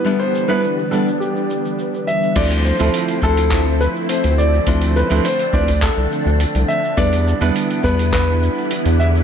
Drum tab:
CC |----------------|x---------------|----------------|----------------|
HH |----------------|oo-ooo-oo---oo--|oo-ooo-oo---oo--|oo-ooo-oo---oo--|
SH |xxxxxxxxxxxxxxxx|x-xxx-xxx-xxxxxx|x-xxx-xxx-xxxxxx|x-xxx-xxx-xxxxxx|
CP |----------------|--------x-------|--------x-------|--------x-------|
BD |----------------|o-----o-o-------|o-----ooo-------|o-----o-o-------|